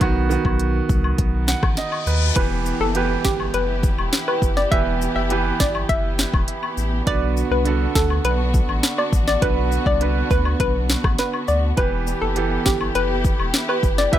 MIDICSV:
0, 0, Header, 1, 8, 480
1, 0, Start_track
1, 0, Key_signature, 1, "minor"
1, 0, Tempo, 588235
1, 9, Time_signature, 4, 2, 24, 8
1, 11577, End_track
2, 0, Start_track
2, 0, Title_t, "Synth pluck"
2, 0, Program_c, 0, 84
2, 1928, Note_on_c, 0, 71, 99
2, 2018, Note_off_c, 0, 71, 0
2, 2291, Note_on_c, 0, 69, 83
2, 2381, Note_off_c, 0, 69, 0
2, 2651, Note_on_c, 0, 67, 88
2, 2740, Note_off_c, 0, 67, 0
2, 2890, Note_on_c, 0, 71, 93
2, 3228, Note_off_c, 0, 71, 0
2, 3492, Note_on_c, 0, 71, 78
2, 3581, Note_off_c, 0, 71, 0
2, 3728, Note_on_c, 0, 74, 79
2, 3819, Note_off_c, 0, 74, 0
2, 3848, Note_on_c, 0, 76, 108
2, 3938, Note_off_c, 0, 76, 0
2, 4208, Note_on_c, 0, 76, 77
2, 4299, Note_off_c, 0, 76, 0
2, 4570, Note_on_c, 0, 74, 83
2, 4660, Note_off_c, 0, 74, 0
2, 4808, Note_on_c, 0, 76, 94
2, 5147, Note_off_c, 0, 76, 0
2, 5772, Note_on_c, 0, 74, 113
2, 5861, Note_off_c, 0, 74, 0
2, 6132, Note_on_c, 0, 71, 86
2, 6221, Note_off_c, 0, 71, 0
2, 6491, Note_on_c, 0, 69, 91
2, 6580, Note_off_c, 0, 69, 0
2, 6731, Note_on_c, 0, 71, 100
2, 7068, Note_off_c, 0, 71, 0
2, 7331, Note_on_c, 0, 74, 75
2, 7420, Note_off_c, 0, 74, 0
2, 7570, Note_on_c, 0, 74, 83
2, 7659, Note_off_c, 0, 74, 0
2, 7689, Note_on_c, 0, 71, 96
2, 7779, Note_off_c, 0, 71, 0
2, 8051, Note_on_c, 0, 74, 88
2, 8140, Note_off_c, 0, 74, 0
2, 8411, Note_on_c, 0, 71, 87
2, 8500, Note_off_c, 0, 71, 0
2, 8652, Note_on_c, 0, 71, 101
2, 8989, Note_off_c, 0, 71, 0
2, 9131, Note_on_c, 0, 71, 82
2, 9220, Note_off_c, 0, 71, 0
2, 9369, Note_on_c, 0, 74, 78
2, 9459, Note_off_c, 0, 74, 0
2, 9610, Note_on_c, 0, 71, 99
2, 9700, Note_off_c, 0, 71, 0
2, 9968, Note_on_c, 0, 69, 85
2, 10059, Note_off_c, 0, 69, 0
2, 10328, Note_on_c, 0, 67, 87
2, 10418, Note_off_c, 0, 67, 0
2, 10570, Note_on_c, 0, 71, 99
2, 10908, Note_off_c, 0, 71, 0
2, 11171, Note_on_c, 0, 71, 80
2, 11260, Note_off_c, 0, 71, 0
2, 11410, Note_on_c, 0, 74, 80
2, 11500, Note_off_c, 0, 74, 0
2, 11533, Note_on_c, 0, 76, 107
2, 11577, Note_off_c, 0, 76, 0
2, 11577, End_track
3, 0, Start_track
3, 0, Title_t, "Grand piano"
3, 0, Program_c, 1, 0
3, 0, Control_c, 1, 64, 127
3, 0, Note_on_c, 1, 51, 86
3, 10, Note_on_c, 1, 59, 79
3, 20, Note_on_c, 1, 66, 101
3, 158, Note_off_c, 1, 51, 0
3, 163, Note_off_c, 1, 59, 0
3, 168, Note_off_c, 1, 66, 0
3, 238, Note_on_c, 1, 51, 94
3, 248, Note_on_c, 1, 59, 78
3, 259, Note_on_c, 1, 66, 94
3, 858, Note_off_c, 1, 51, 0
3, 864, Note_off_c, 1, 59, 0
3, 869, Note_off_c, 1, 66, 0
3, 1205, Note_on_c, 1, 78, 72
3, 1430, Note_off_c, 1, 78, 0
3, 1450, Note_on_c, 1, 75, 68
3, 1673, Note_off_c, 1, 75, 0
3, 1690, Note_on_c, 1, 71, 72
3, 1913, Note_off_c, 1, 71, 0
3, 1921, Note_on_c, 1, 52, 76
3, 1928, Note_on_c, 1, 59, 67
3, 1933, Note_on_c, 1, 67, 67
3, 1940, Control_c, 1, 64, 0
3, 1941, Note_on_c, 1, 71, 84
3, 2092, Control_c, 1, 64, 127
3, 2232, Note_off_c, 1, 52, 0
3, 2236, Note_off_c, 1, 59, 0
3, 2239, Note_off_c, 1, 67, 0
3, 2243, Note_off_c, 1, 71, 0
3, 2403, Note_on_c, 1, 52, 75
3, 2409, Note_on_c, 1, 59, 70
3, 2415, Note_on_c, 1, 67, 71
3, 2422, Note_on_c, 1, 71, 82
3, 3021, Note_off_c, 1, 52, 0
3, 3024, Note_off_c, 1, 59, 0
3, 3027, Note_off_c, 1, 67, 0
3, 3031, Note_off_c, 1, 71, 0
3, 3841, Note_on_c, 1, 52, 76
3, 3848, Note_on_c, 1, 59, 71
3, 3854, Note_on_c, 1, 67, 70
3, 3861, Note_on_c, 1, 71, 83
3, 4153, Note_off_c, 1, 52, 0
3, 4156, Note_off_c, 1, 59, 0
3, 4159, Note_off_c, 1, 67, 0
3, 4162, Note_off_c, 1, 71, 0
3, 4321, Note_on_c, 1, 52, 77
3, 4327, Note_on_c, 1, 59, 68
3, 4334, Note_on_c, 1, 67, 67
3, 4341, Note_on_c, 1, 71, 87
3, 4940, Note_off_c, 1, 52, 0
3, 4943, Note_off_c, 1, 59, 0
3, 4947, Note_off_c, 1, 67, 0
3, 4950, Note_off_c, 1, 71, 0
3, 5762, Note_on_c, 1, 50, 80
3, 5767, Note_on_c, 1, 59, 69
3, 5775, Note_on_c, 1, 66, 74
3, 5778, Control_c, 1, 64, 0
3, 5781, Note_on_c, 1, 71, 84
3, 5916, Control_c, 1, 64, 127
3, 6073, Note_off_c, 1, 50, 0
3, 6076, Note_off_c, 1, 59, 0
3, 6080, Note_off_c, 1, 66, 0
3, 6082, Note_off_c, 1, 71, 0
3, 6238, Note_on_c, 1, 50, 75
3, 6245, Note_on_c, 1, 59, 68
3, 6252, Note_on_c, 1, 66, 71
3, 6258, Note_on_c, 1, 69, 83
3, 6859, Note_off_c, 1, 50, 0
3, 6862, Note_off_c, 1, 59, 0
3, 6866, Note_off_c, 1, 66, 0
3, 6869, Note_off_c, 1, 69, 0
3, 7682, Note_on_c, 1, 50, 76
3, 7689, Note_on_c, 1, 59, 70
3, 7694, Note_on_c, 1, 66, 68
3, 7701, Note_on_c, 1, 71, 84
3, 7993, Note_off_c, 1, 50, 0
3, 7996, Note_off_c, 1, 59, 0
3, 7999, Note_off_c, 1, 66, 0
3, 8003, Note_off_c, 1, 71, 0
3, 8160, Note_on_c, 1, 50, 75
3, 8167, Note_on_c, 1, 59, 70
3, 8173, Note_on_c, 1, 66, 68
3, 8179, Note_on_c, 1, 71, 84
3, 8780, Note_off_c, 1, 50, 0
3, 8783, Note_off_c, 1, 59, 0
3, 8786, Note_off_c, 1, 66, 0
3, 8789, Note_off_c, 1, 71, 0
3, 9601, Note_on_c, 1, 52, 75
3, 9607, Note_on_c, 1, 59, 70
3, 9615, Note_on_c, 1, 67, 73
3, 9619, Control_c, 1, 64, 0
3, 9620, Note_on_c, 1, 71, 87
3, 9741, Control_c, 1, 64, 127
3, 9913, Note_off_c, 1, 52, 0
3, 9916, Note_off_c, 1, 59, 0
3, 9919, Note_off_c, 1, 67, 0
3, 9922, Note_off_c, 1, 71, 0
3, 10079, Note_on_c, 1, 52, 75
3, 10087, Note_on_c, 1, 59, 67
3, 10093, Note_on_c, 1, 67, 72
3, 10099, Note_on_c, 1, 69, 81
3, 10699, Note_off_c, 1, 52, 0
3, 10703, Note_off_c, 1, 59, 0
3, 10706, Note_off_c, 1, 67, 0
3, 10709, Note_off_c, 1, 69, 0
3, 11519, Note_on_c, 1, 52, 77
3, 11525, Note_on_c, 1, 59, 74
3, 11532, Note_on_c, 1, 67, 70
3, 11539, Note_on_c, 1, 71, 85
3, 11577, Note_off_c, 1, 52, 0
3, 11577, Note_off_c, 1, 59, 0
3, 11577, Note_off_c, 1, 67, 0
3, 11577, Note_off_c, 1, 71, 0
3, 11577, End_track
4, 0, Start_track
4, 0, Title_t, "String section"
4, 0, Program_c, 2, 48
4, 1930, Note_on_c, 2, 59, 77
4, 1932, Note_on_c, 2, 64, 70
4, 1932, Note_on_c, 2, 67, 84
4, 5738, Note_off_c, 2, 64, 0
4, 5738, Note_off_c, 2, 67, 0
4, 5771, Note_on_c, 2, 66, 87
4, 5772, Note_on_c, 2, 62, 70
4, 9578, Note_off_c, 2, 62, 0
4, 9578, Note_off_c, 2, 66, 0
4, 9613, Note_on_c, 2, 64, 71
4, 9613, Note_on_c, 2, 67, 89
4, 11577, Note_off_c, 2, 59, 0
4, 11577, Note_off_c, 2, 64, 0
4, 11577, Note_off_c, 2, 67, 0
4, 11577, End_track
5, 0, Start_track
5, 0, Title_t, "Sub bass"
5, 0, Program_c, 3, 38
5, 9, Note_on_c, 3, 35, 107
5, 305, Note_off_c, 3, 35, 0
5, 366, Note_on_c, 3, 35, 94
5, 663, Note_off_c, 3, 35, 0
5, 730, Note_on_c, 3, 36, 103
5, 927, Note_off_c, 3, 36, 0
5, 966, Note_on_c, 3, 35, 90
5, 1264, Note_off_c, 3, 35, 0
5, 1329, Note_on_c, 3, 33, 80
5, 1428, Note_off_c, 3, 33, 0
5, 1685, Note_on_c, 3, 39, 88
5, 1884, Note_off_c, 3, 39, 0
5, 1928, Note_on_c, 3, 28, 114
5, 2225, Note_off_c, 3, 28, 0
5, 2286, Note_on_c, 3, 30, 85
5, 2584, Note_off_c, 3, 30, 0
5, 2650, Note_on_c, 3, 31, 90
5, 2847, Note_off_c, 3, 31, 0
5, 2886, Note_on_c, 3, 30, 98
5, 3184, Note_off_c, 3, 30, 0
5, 3246, Note_on_c, 3, 28, 100
5, 3346, Note_off_c, 3, 28, 0
5, 3607, Note_on_c, 3, 30, 86
5, 3805, Note_off_c, 3, 30, 0
5, 3848, Note_on_c, 3, 28, 115
5, 4145, Note_off_c, 3, 28, 0
5, 4206, Note_on_c, 3, 30, 96
5, 4504, Note_off_c, 3, 30, 0
5, 4572, Note_on_c, 3, 31, 100
5, 4768, Note_off_c, 3, 31, 0
5, 4809, Note_on_c, 3, 30, 99
5, 5105, Note_off_c, 3, 30, 0
5, 5169, Note_on_c, 3, 28, 95
5, 5268, Note_off_c, 3, 28, 0
5, 5527, Note_on_c, 3, 33, 94
5, 5726, Note_off_c, 3, 33, 0
5, 5769, Note_on_c, 3, 35, 113
5, 6065, Note_off_c, 3, 35, 0
5, 6126, Note_on_c, 3, 36, 88
5, 6424, Note_off_c, 3, 36, 0
5, 6491, Note_on_c, 3, 38, 91
5, 6688, Note_off_c, 3, 38, 0
5, 6724, Note_on_c, 3, 35, 99
5, 7023, Note_off_c, 3, 35, 0
5, 7088, Note_on_c, 3, 33, 100
5, 7187, Note_off_c, 3, 33, 0
5, 7446, Note_on_c, 3, 33, 91
5, 7645, Note_off_c, 3, 33, 0
5, 7689, Note_on_c, 3, 35, 110
5, 7985, Note_off_c, 3, 35, 0
5, 8046, Note_on_c, 3, 36, 97
5, 8344, Note_off_c, 3, 36, 0
5, 8411, Note_on_c, 3, 38, 91
5, 8608, Note_off_c, 3, 38, 0
5, 8649, Note_on_c, 3, 35, 94
5, 8945, Note_off_c, 3, 35, 0
5, 9010, Note_on_c, 3, 33, 94
5, 9108, Note_off_c, 3, 33, 0
5, 9371, Note_on_c, 3, 38, 90
5, 9568, Note_off_c, 3, 38, 0
5, 9609, Note_on_c, 3, 28, 114
5, 9905, Note_off_c, 3, 28, 0
5, 9970, Note_on_c, 3, 30, 87
5, 10266, Note_off_c, 3, 30, 0
5, 10330, Note_on_c, 3, 31, 86
5, 10527, Note_off_c, 3, 31, 0
5, 10568, Note_on_c, 3, 30, 93
5, 10865, Note_off_c, 3, 30, 0
5, 10929, Note_on_c, 3, 28, 101
5, 11028, Note_off_c, 3, 28, 0
5, 11287, Note_on_c, 3, 30, 90
5, 11485, Note_off_c, 3, 30, 0
5, 11529, Note_on_c, 3, 28, 114
5, 11577, Note_off_c, 3, 28, 0
5, 11577, End_track
6, 0, Start_track
6, 0, Title_t, "Downlifter"
6, 0, Program_c, 4, 103
6, 1928, Note_on_c, 4, 60, 86
6, 5769, Note_off_c, 4, 60, 0
6, 11577, End_track
7, 0, Start_track
7, 0, Title_t, "Reverse cymbal"
7, 0, Program_c, 5, 119
7, 968, Note_on_c, 5, 60, 84
7, 1929, Note_off_c, 5, 60, 0
7, 11577, End_track
8, 0, Start_track
8, 0, Title_t, "Drums"
8, 7, Note_on_c, 9, 42, 82
8, 7, Note_on_c, 9, 76, 70
8, 8, Note_on_c, 9, 36, 113
8, 89, Note_off_c, 9, 42, 0
8, 89, Note_off_c, 9, 76, 0
8, 90, Note_off_c, 9, 36, 0
8, 251, Note_on_c, 9, 69, 68
8, 332, Note_off_c, 9, 69, 0
8, 366, Note_on_c, 9, 36, 87
8, 372, Note_on_c, 9, 76, 65
8, 448, Note_off_c, 9, 36, 0
8, 453, Note_off_c, 9, 76, 0
8, 486, Note_on_c, 9, 42, 71
8, 567, Note_off_c, 9, 42, 0
8, 729, Note_on_c, 9, 36, 95
8, 730, Note_on_c, 9, 69, 68
8, 811, Note_off_c, 9, 36, 0
8, 811, Note_off_c, 9, 69, 0
8, 851, Note_on_c, 9, 76, 69
8, 932, Note_off_c, 9, 76, 0
8, 966, Note_on_c, 9, 42, 85
8, 967, Note_on_c, 9, 36, 94
8, 1048, Note_off_c, 9, 36, 0
8, 1048, Note_off_c, 9, 42, 0
8, 1206, Note_on_c, 9, 69, 63
8, 1208, Note_on_c, 9, 38, 115
8, 1288, Note_off_c, 9, 69, 0
8, 1290, Note_off_c, 9, 38, 0
8, 1328, Note_on_c, 9, 76, 74
8, 1329, Note_on_c, 9, 36, 94
8, 1330, Note_on_c, 9, 37, 89
8, 1409, Note_off_c, 9, 76, 0
8, 1411, Note_off_c, 9, 36, 0
8, 1411, Note_off_c, 9, 37, 0
8, 1444, Note_on_c, 9, 42, 81
8, 1445, Note_on_c, 9, 38, 69
8, 1526, Note_off_c, 9, 42, 0
8, 1527, Note_off_c, 9, 38, 0
8, 1567, Note_on_c, 9, 76, 77
8, 1648, Note_off_c, 9, 76, 0
8, 1686, Note_on_c, 9, 69, 71
8, 1768, Note_off_c, 9, 69, 0
8, 1927, Note_on_c, 9, 36, 121
8, 1927, Note_on_c, 9, 42, 87
8, 2008, Note_off_c, 9, 42, 0
8, 2009, Note_off_c, 9, 36, 0
8, 2169, Note_on_c, 9, 69, 74
8, 2251, Note_off_c, 9, 69, 0
8, 2406, Note_on_c, 9, 42, 77
8, 2488, Note_off_c, 9, 42, 0
8, 2649, Note_on_c, 9, 38, 125
8, 2650, Note_on_c, 9, 36, 103
8, 2650, Note_on_c, 9, 69, 70
8, 2730, Note_off_c, 9, 38, 0
8, 2731, Note_off_c, 9, 36, 0
8, 2732, Note_off_c, 9, 69, 0
8, 2773, Note_on_c, 9, 76, 70
8, 2855, Note_off_c, 9, 76, 0
8, 2887, Note_on_c, 9, 42, 91
8, 2969, Note_off_c, 9, 42, 0
8, 3128, Note_on_c, 9, 36, 102
8, 3128, Note_on_c, 9, 69, 66
8, 3209, Note_off_c, 9, 69, 0
8, 3210, Note_off_c, 9, 36, 0
8, 3252, Note_on_c, 9, 76, 80
8, 3333, Note_off_c, 9, 76, 0
8, 3367, Note_on_c, 9, 42, 84
8, 3368, Note_on_c, 9, 38, 124
8, 3449, Note_off_c, 9, 38, 0
8, 3449, Note_off_c, 9, 42, 0
8, 3491, Note_on_c, 9, 76, 76
8, 3573, Note_off_c, 9, 76, 0
8, 3606, Note_on_c, 9, 36, 87
8, 3611, Note_on_c, 9, 69, 73
8, 3688, Note_off_c, 9, 36, 0
8, 3692, Note_off_c, 9, 69, 0
8, 3728, Note_on_c, 9, 38, 65
8, 3810, Note_off_c, 9, 38, 0
8, 3849, Note_on_c, 9, 36, 122
8, 3849, Note_on_c, 9, 42, 90
8, 3930, Note_off_c, 9, 36, 0
8, 3930, Note_off_c, 9, 42, 0
8, 4093, Note_on_c, 9, 69, 74
8, 4175, Note_off_c, 9, 69, 0
8, 4327, Note_on_c, 9, 42, 78
8, 4408, Note_off_c, 9, 42, 0
8, 4570, Note_on_c, 9, 38, 125
8, 4570, Note_on_c, 9, 69, 69
8, 4571, Note_on_c, 9, 36, 104
8, 4652, Note_off_c, 9, 36, 0
8, 4652, Note_off_c, 9, 38, 0
8, 4652, Note_off_c, 9, 69, 0
8, 4691, Note_on_c, 9, 76, 74
8, 4772, Note_off_c, 9, 76, 0
8, 4808, Note_on_c, 9, 36, 95
8, 4809, Note_on_c, 9, 42, 85
8, 4890, Note_off_c, 9, 36, 0
8, 4890, Note_off_c, 9, 42, 0
8, 5048, Note_on_c, 9, 69, 69
8, 5050, Note_on_c, 9, 38, 115
8, 5129, Note_off_c, 9, 69, 0
8, 5132, Note_off_c, 9, 38, 0
8, 5170, Note_on_c, 9, 36, 98
8, 5172, Note_on_c, 9, 76, 81
8, 5252, Note_off_c, 9, 36, 0
8, 5254, Note_off_c, 9, 76, 0
8, 5286, Note_on_c, 9, 42, 86
8, 5368, Note_off_c, 9, 42, 0
8, 5409, Note_on_c, 9, 76, 77
8, 5490, Note_off_c, 9, 76, 0
8, 5528, Note_on_c, 9, 69, 72
8, 5610, Note_off_c, 9, 69, 0
8, 5768, Note_on_c, 9, 42, 92
8, 5769, Note_on_c, 9, 36, 115
8, 5849, Note_off_c, 9, 42, 0
8, 5850, Note_off_c, 9, 36, 0
8, 6014, Note_on_c, 9, 69, 70
8, 6095, Note_off_c, 9, 69, 0
8, 6246, Note_on_c, 9, 42, 74
8, 6328, Note_off_c, 9, 42, 0
8, 6491, Note_on_c, 9, 36, 96
8, 6491, Note_on_c, 9, 38, 124
8, 6492, Note_on_c, 9, 69, 68
8, 6572, Note_off_c, 9, 36, 0
8, 6573, Note_off_c, 9, 38, 0
8, 6574, Note_off_c, 9, 69, 0
8, 6612, Note_on_c, 9, 76, 72
8, 6693, Note_off_c, 9, 76, 0
8, 6729, Note_on_c, 9, 42, 84
8, 6811, Note_off_c, 9, 42, 0
8, 6969, Note_on_c, 9, 36, 94
8, 6969, Note_on_c, 9, 69, 66
8, 7050, Note_off_c, 9, 36, 0
8, 7051, Note_off_c, 9, 69, 0
8, 7091, Note_on_c, 9, 76, 77
8, 7172, Note_off_c, 9, 76, 0
8, 7207, Note_on_c, 9, 42, 82
8, 7208, Note_on_c, 9, 38, 127
8, 7289, Note_off_c, 9, 38, 0
8, 7289, Note_off_c, 9, 42, 0
8, 7328, Note_on_c, 9, 76, 73
8, 7410, Note_off_c, 9, 76, 0
8, 7447, Note_on_c, 9, 36, 92
8, 7450, Note_on_c, 9, 69, 74
8, 7528, Note_off_c, 9, 36, 0
8, 7531, Note_off_c, 9, 69, 0
8, 7569, Note_on_c, 9, 38, 66
8, 7650, Note_off_c, 9, 38, 0
8, 7688, Note_on_c, 9, 36, 120
8, 7688, Note_on_c, 9, 42, 86
8, 7770, Note_off_c, 9, 36, 0
8, 7770, Note_off_c, 9, 42, 0
8, 7930, Note_on_c, 9, 69, 71
8, 8012, Note_off_c, 9, 69, 0
8, 8047, Note_on_c, 9, 36, 94
8, 8128, Note_off_c, 9, 36, 0
8, 8167, Note_on_c, 9, 42, 73
8, 8249, Note_off_c, 9, 42, 0
8, 8410, Note_on_c, 9, 36, 96
8, 8410, Note_on_c, 9, 69, 69
8, 8491, Note_off_c, 9, 69, 0
8, 8492, Note_off_c, 9, 36, 0
8, 8530, Note_on_c, 9, 76, 74
8, 8612, Note_off_c, 9, 76, 0
8, 8648, Note_on_c, 9, 36, 96
8, 8649, Note_on_c, 9, 42, 87
8, 8730, Note_off_c, 9, 36, 0
8, 8730, Note_off_c, 9, 42, 0
8, 8889, Note_on_c, 9, 69, 66
8, 8891, Note_on_c, 9, 38, 120
8, 8970, Note_off_c, 9, 69, 0
8, 8973, Note_off_c, 9, 38, 0
8, 9010, Note_on_c, 9, 36, 96
8, 9010, Note_on_c, 9, 37, 96
8, 9011, Note_on_c, 9, 76, 80
8, 9092, Note_off_c, 9, 36, 0
8, 9092, Note_off_c, 9, 37, 0
8, 9092, Note_off_c, 9, 76, 0
8, 9127, Note_on_c, 9, 38, 73
8, 9127, Note_on_c, 9, 42, 83
8, 9208, Note_off_c, 9, 42, 0
8, 9209, Note_off_c, 9, 38, 0
8, 9249, Note_on_c, 9, 76, 75
8, 9331, Note_off_c, 9, 76, 0
8, 9367, Note_on_c, 9, 69, 73
8, 9448, Note_off_c, 9, 69, 0
8, 9607, Note_on_c, 9, 42, 90
8, 9608, Note_on_c, 9, 36, 124
8, 9689, Note_off_c, 9, 42, 0
8, 9690, Note_off_c, 9, 36, 0
8, 9850, Note_on_c, 9, 69, 71
8, 9931, Note_off_c, 9, 69, 0
8, 10085, Note_on_c, 9, 42, 75
8, 10167, Note_off_c, 9, 42, 0
8, 10328, Note_on_c, 9, 38, 122
8, 10330, Note_on_c, 9, 36, 98
8, 10331, Note_on_c, 9, 69, 67
8, 10410, Note_off_c, 9, 38, 0
8, 10412, Note_off_c, 9, 36, 0
8, 10412, Note_off_c, 9, 69, 0
8, 10450, Note_on_c, 9, 76, 74
8, 10532, Note_off_c, 9, 76, 0
8, 10568, Note_on_c, 9, 42, 89
8, 10650, Note_off_c, 9, 42, 0
8, 10807, Note_on_c, 9, 69, 65
8, 10808, Note_on_c, 9, 36, 99
8, 10889, Note_off_c, 9, 69, 0
8, 10890, Note_off_c, 9, 36, 0
8, 10931, Note_on_c, 9, 76, 77
8, 11012, Note_off_c, 9, 76, 0
8, 11046, Note_on_c, 9, 42, 81
8, 11047, Note_on_c, 9, 38, 127
8, 11128, Note_off_c, 9, 42, 0
8, 11129, Note_off_c, 9, 38, 0
8, 11169, Note_on_c, 9, 76, 77
8, 11250, Note_off_c, 9, 76, 0
8, 11287, Note_on_c, 9, 36, 92
8, 11288, Note_on_c, 9, 69, 74
8, 11368, Note_off_c, 9, 36, 0
8, 11369, Note_off_c, 9, 69, 0
8, 11410, Note_on_c, 9, 38, 63
8, 11491, Note_off_c, 9, 38, 0
8, 11529, Note_on_c, 9, 36, 119
8, 11529, Note_on_c, 9, 42, 91
8, 11577, Note_off_c, 9, 36, 0
8, 11577, Note_off_c, 9, 42, 0
8, 11577, End_track
0, 0, End_of_file